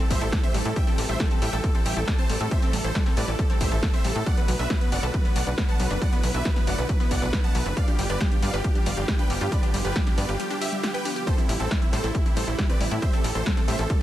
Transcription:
Already playing: E3 G3 A3 C4 G4
0.10 A1 G3 C5 E5, kick, open hi-hat
0.21 A1 E4 A4, closed hi-hat
0.32 G3 A4, kick, snare, closed hi-hat
0.43 C4 C5 E5, closed hi-hat
0.54 A1 G3 A4, open hi-hat
0.65 A2 E4 A4, closed hi-hat
0.76 G3 E5 G5, kick, closed hi-hat
0.87 C4 A4, closed hi-hat
0.98 A1 G3 A4, open hi-hat
1.09 A1 E4 C5 E5, closed hi-hat
1.20 G3 A4, kick, snare, closed hi-hat
1.31 C4 A4, closed hi-hat
1.42 A2 G3 E5 G5, open hi-hat
1.53 A1 A4, closed hi-hat
1.64 G3 A4, kick, closed hi-hat
1.75 C4 A4, closed hi-hat
1.86 A1 G3 E5 G5, open hi-hat
1.97 A1 E4 A4, closed hi-hat
2.08 G3 A4, kick, snare, closed hi-hat
2.19 C4 C5 A5, closed hi-hat
2.29 A1 G3 A4, open hi-hat
2.40 A2 E4 A4, closed hi-hat
2.51 G3 C5 E5, kick, closed hi-hat
2.62 C4 A4, closed hi-hat
2.73 A1 G3 A4, open hi-hat
2.84 A1 E4 A4 C5, closed hi-hat
2.95 G3 A4, kick, snare, closed hi-hat
3.06 C4 A4, snare, closed hi-hat
3.17 A2 G3 B4 D5, open hi-hat
3.28 A1 E4 A4, closed hi-hat
3.39 G3 A4, kick, closed hi-hat
3.50 C4 A4, closed hi-hat
3.61 A1 G3 C5 E5, kick, open hi-hat
3.72 A1 E4 A4
3.83 G3 A4, kick, snare, closed hi-hat
3.94 C4 C5 E5, closed hi-hat
4.04 A1 G3 A4, open hi-hat
4.15 A2 E4 A4, closed hi-hat
4.26 D3 F#3 B3 F#4 D5 F#5, kick, closed hi-hat
4.37 B3 B4, closed hi-hat
4.48 B1 F#3 B4, open hi-hat
4.59 B1 D4 B4 E5, closed hi-hat
4.70 F#3 B4, kick, snare, closed hi-hat
4.81 B3 B4, closed hi-hat
4.92 F#1 F#3 D5 F#5, open hi-hat
5.03 B1 A4 B4, closed hi-hat
5.14 F#3 B4, kick, closed hi-hat
5.25 B3 B4, closed hi-hat
5.36 B1 F#3 D5 F#5, open hi-hat
5.47 B1 D4 B4, closed hi-hat
5.58 F#3 B4, kick, snare, closed hi-hat
5.69 B3 F#5 A5, closed hi-hat
5.80 B1 F#3 B4, open hi-hat
5.91 F#1 D4 B4, closed hi-hat
6.01 F#3 E4 D5 F#5, kick, closed hi-hat
6.12 B3 B4, closed hi-hat
6.23 B1 F#3 B4, open hi-hat
6.34 B1 D4 B4 E5, closed hi-hat
6.45 F#3 B4, kick, snare, closed hi-hat
6.56 B3 B4, snare, closed hi-hat
6.67 F#1 F#3 D5 F#5, open hi-hat
6.78 B1 D4 B4, closed hi-hat
6.89 F#3 B4, kick, closed hi-hat
7.00 B3 B4, closed hi-hat
7.11 B1 F#3 D5 F#5, kick, open hi-hat
7.22 B1 D4 B4, closed hi-hat
7.33 F#3 B4, kick, snare, closed hi-hat
7.44 B3 F#5 A5, closed hi-hat
7.55 B1 F#3 B4, open hi-hat
7.66 F#1 D4 B4, closed hi-hat
7.77 D3 F3 G3 F4 D5 F5, kick, closed hi-hat
7.88 D4 G4, closed hi-hat
7.99 G1 G3 G4, open hi-hat
8.10 G1 F4 B4 D5, closed hi-hat
8.21 G3 G4, kick, snare, closed hi-hat
8.32 D4 G4, closed hi-hat
8.42 G2 G3 D5 F5, open hi-hat
8.54 G1 G4 B4, closed hi-hat
8.64 G3 G4, kick, closed hi-hat
8.75 D4 G4, closed hi-hat
8.86 G1 G3 D5 F5, open hi-hat
8.97 G1 F4 G4, closed hi-hat
9.08 G3 G4, kick, snare, closed hi-hat
9.19 D4 B4 G5, closed hi-hat
9.30 G1 G3 G4, open hi-hat
9.41 G2 F4 G4, closed hi-hat
9.52 G3 B4 D5, kick, closed hi-hat
9.63 D4 G4, closed hi-hat
9.74 G1 G3 G4, open hi-hat
9.85 G1 F4 G4 B4, closed hi-hat
9.96 G3 G4, kick, snare, closed hi-hat
10.07 D4 G4, snare, closed hi-hat
10.18 G2 G3 B4 D5, open hi-hat
10.29 G1 F4 G4, closed hi-hat
10.40 G3 G4, closed hi-hat
10.50 D4 G4, closed hi-hat
10.61 D4 G4 E5, open hi-hat
10.72 G3 G4, closed hi-hat
10.83 F4 G4, snare, closed hi-hat
10.94 B3 B4 G5, closed hi-hat
11.05 D4 G4, open hi-hat
11.16 G4, closed hi-hat
11.27 E3 G3 A3 C4 G4 A4 C5, kick, closed hi-hat
11.38 C4 E4, closed hi-hat
11.49 A1 G3 E4, open hi-hat
11.60 A1 C4 E4 A4, closed hi-hat
11.71 G3 E4, kick, snare, closed hi-hat
11.82 C4 E4, closed hi-hat
11.93 A2 G3 A4 C5, open hi-hat
12.04 A1 E4 A4, closed hi-hat
12.14 G3 E4, kick, closed hi-hat
12.25 C4 E4, closed hi-hat
12.36 A1 G3 A4 C5, open hi-hat
12.47 A1 E4, closed hi-hat
12.58 G3 E4, kick, snare, closed hi-hat
12.69 C4 B4 D5, closed hi-hat
12.80 A1 G3 E4, open hi-hat
12.91 A2 E4, closed hi-hat
13.02 G3 C5 E5, kick, closed hi-hat
13.13 C4 A4, closed hi-hat
13.24 A1 G3 A4, open hi-hat
13.35 A1 E4 A4 C5, closed hi-hat
13.46 G3 A4, kick, snare, closed hi-hat
13.57 C4 A4, snare, closed hi-hat
13.68 A2 G3 C5 E5, open hi-hat
13.79 A1 E4 A4, closed hi-hat
13.90 G3 A4, kick, closed hi-hat

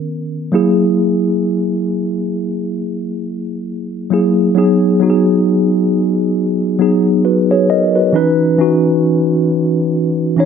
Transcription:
0.52 F#3 A#3 E4 G#4
4.10 F#3 A#3 E4 G#4
4.55 F#3 B3 D#4 G#4
5.00 F#3 B3 D#4 F#4
5.10 G#4
6.79 F#3 B3 D#4 G#4
7.25 F#4 B4
7.51 G#4 C#5
7.70 A#4 D#5
7.96 F#4 B4
8.13 E3 C#4 D#4 B4
8.58 E3 C#4 D#4 F#4
10.37 E3 C#4 D#4 C#5

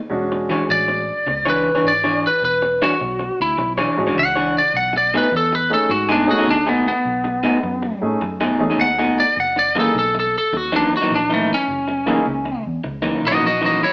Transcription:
0.10 E1 G#3 C#4 D4 F#4
0.32 muted clean electric guitar stroke
0.50 E3 D4 G#4 C#5
0.69 A1 D5, muted clean electric guitar stroke
0.88 muted clean electric guitar stroke
1.27 C#2, muted clean electric guitar stroke
1.45 E3 D4 G#4 C#5
1.50 B4
1.75 E3 D4 G#4 C#5
1.84 G#1
1.88 D5
2.04 E3 D4 G#4 C#5
2.27 B4
2.42 E1 B4
2.62 muted clean electric guitar stroke
2.82 E3 D4 F#4 G#4 C#5
3.00 B1, muted clean electric guitar stroke
3.19 muted clean electric guitar stroke
3.40 D2 E4
3.58 B1, muted clean electric guitar stroke
3.78 E3 D4 G#4 C#5
3.97 A1 G#3 C#4 D4 F#4
4.07 E3 D4 G#4 C#5
4.16 C#2 F#5
4.35 E3 D4 G#4 C#5
4.58 D5
4.74 B1 F#5
4.93 muted clean electric guitar stroke
4.97 D5
5.14 B2 A3 D#4 G#4 B4
5.32 E2, muted clean electric guitar stroke
5.37 A4
5.53 B4, muted clean electric guitar stroke
5.70 A3 C#4 D#4 G#4 A4
5.89 G#2 F#4, muted clean electric guitar stroke
6.09 B2 A3 D4 D#4 G#4
6.27 A3 C#4 D#4 F#4 G#4
6.38 B2 A3 D#4 G#4
6.48 D#2 D4
6.66 B2 A3 B3 D#4 G#4
6.88 B3
7.05 B1
7.24 muted clean electric guitar stroke
7.43 B2 A3 D#4 G#4
7.63 F#2, muted clean electric guitar stroke
7.83 muted clean electric guitar stroke
8.01 A2 A3 C#4 D#4 G#4
8.21 F#2, muted clean electric guitar stroke
8.41 B2 A3 D#4 G#4
8.59 E2 A3 C#4 D#4 G#4
8.70 B2 A3 D#4 G#4
8.78 D#2 F#5
8.98 B2 A3 D#4 G#4
9.20 D5
9.37 F#1 F#5
9.56 D5, muted clean electric guitar stroke
9.75 F#2 E3 A#3 D#4 E4 G#4
9.80 A4
9.95 B1, muted clean electric guitar stroke
9.99 A4
10.15 muted clean electric guitar stroke
10.20 A4
10.38 A4
10.53 D#2, muted clean electric guitar stroke
10.57 F#4
10.72 F#2 E3 A#3 D4 D#4
10.97 F#4
11.01 F#2 E3 A#3 D#4
11.11 A#1
11.15 D4
11.29 F#2 E3 A#3 D#4
11.34 A3
11.54 C#4
11.68 F#1
11.88 muted clean electric guitar stroke
12.06 F#2 E3 A#3 D#4 E4 G#4
12.25 C#2, muted clean electric guitar stroke
12.45 muted clean electric guitar stroke
12.66 E2
12.84 C#2, muted clean electric guitar stroke
13.02 F#2 E3 A#3 D#4
13.24 B1 F#4 D#5
13.31 F#2 E3 A#3 D#4
13.41 A#1
13.46 F#4 D#5
13.61 F#2 E3 A#3 D#4
13.65 F#4 D#5
13.83 E4 C#5

